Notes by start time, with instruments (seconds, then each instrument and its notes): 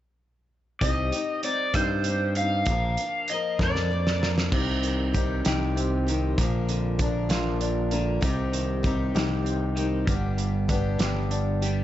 0.81 picked electric bass C2, steel-string acoustic guitar C3 G3 C4 D#4 G4, electric slide guitar D#5, kick, closed hi-hat
1.12 steel-string acoustic guitar C4 D#4 G4, closed hi-hat
1.43 steel-string acoustic guitar G3 C4 D#4 G4, electric slide guitar D5, closed hi-hat
1.74 picked electric bass G2, steel-string acoustic guitar G3 C4 D#4 G4, electric slide guitar C5, kick, cross-stick, closed hi-hat
1.78 steel-string acoustic guitar C3
2.04 steel-string acoustic guitar G3 C4, closed hi-hat
2.08 steel-string acoustic guitar D#4 G4
2.35 steel-string acoustic guitar G4, electric slide guitar F5, closed hi-hat
2.40 steel-string acoustic guitar C4 D#4
2.66 picked electric bass A#1, steel-string acoustic guitar A#2 D3 F3, kick, closed hi-hat
2.70 steel-string acoustic guitar A#3 D4 A#4
2.97 steel-string acoustic guitar D4 A#4, closed hi-hat
3.01 steel-string acoustic guitar F3 A#3
3.28 steel-string acoustic guitar F3 A#3, electric slide guitar D#5, closed hi-hat
3.34 steel-string acoustic guitar A#4
3.59 picked electric bass F2, steel-string acoustic guitar A#2 D3 F3 A#3 D4 A#4, kick, snare
3.63 electric slide guitar D5
3.76 snare
3.90 steel-string acoustic guitar F3 A#3 D4 A#4
4.07 snare
4.21 steel-string acoustic guitar F3 A#3 D4 A#4, snare
4.38 snare
4.52 picked electric bass C2, steel-string acoustic guitar C3 G3 C4 D#4 G4, kick, crash
4.83 clean electric guitar D#3, closed hi-hat
5.13 steel-string acoustic guitar G3 C4 D#4 G4, kick, closed hi-hat
5.45 picked electric bass C2, steel-string acoustic guitar C3 G3 C4 D#4 G4, snare, closed hi-hat
5.76 clean electric guitar C4, closed hi-hat
6.07 clean electric guitar D#3, steel-string acoustic guitar C4 D#4 G4, closed hi-hat
6.38 picked electric bass A#1, steel-string acoustic guitar A#2 D3 F3 A#3 D4 A#4, kick, closed hi-hat
6.69 clean electric guitar D3, closed hi-hat
6.99 steel-string acoustic guitar F3 A#3 D4 A#4, kick, closed hi-hat
7.29 picked electric bass A#1, steel-string acoustic guitar A#2 D3 F3 A#3 D4 A#4, clean electric guitar F4, snare, closed hi-hat
7.61 clean electric guitar D4, closed hi-hat
7.91 clean electric guitar D3, steel-string acoustic guitar F3 A#3 D4 A#4, closed hi-hat
8.21 picked electric bass C2, steel-string acoustic guitar C3 G3 C4 D#4 G4, kick, closed hi-hat
8.53 clean electric guitar D#3, closed hi-hat
8.83 steel-string acoustic guitar G3 C4 D#4 G4, kick, closed hi-hat
9.15 picked electric bass C2, steel-string acoustic guitar C3 G3 C4 D#4 G4, snare, closed hi-hat
9.45 clean electric guitar C4, closed hi-hat
9.76 clean electric guitar D#3, steel-string acoustic guitar C4 D#4 G4, closed hi-hat
10.07 picked electric bass G1, steel-string acoustic guitar G2 D3 G3 B3 D4 G4, kick, closed hi-hat
10.38 clean electric guitar G3, closed hi-hat
10.68 steel-string acoustic guitar G3 B3 D4 G4, kick, closed hi-hat
10.99 picked electric bass G1, steel-string acoustic guitar G2 D3 G3 B3 D4 G4, snare, closed hi-hat
11.31 clean electric guitar D4, closed hi-hat
11.62 steel-string acoustic guitar G3 B3 D4 G4, closed hi-hat